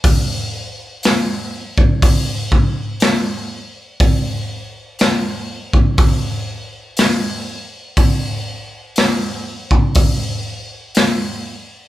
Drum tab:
HH |o---o---o---o---|o---o---o---o---|o---o---o---o---|
SD |----o-------o---|----o-------o---|----o-------o---|
BD |o------oo-o-----|o------oo-------|o------oo-------|